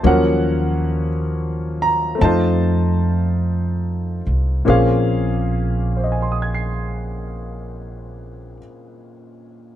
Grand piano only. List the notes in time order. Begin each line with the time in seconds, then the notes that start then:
0.03 F3 F#3 A#3 C#4 A#4 C#5 F#5
1.82 A#5
2.15 A3 C4
2.22 D#4 F4 C5 D#5 A5
4.65 A#2 A#3 C4 C#4 G#4
4.70 F5
5.97 C5
6.04 D#5
6.12 G#5
6.22 C6
6.32 D#6
6.42 G#6
6.54 C7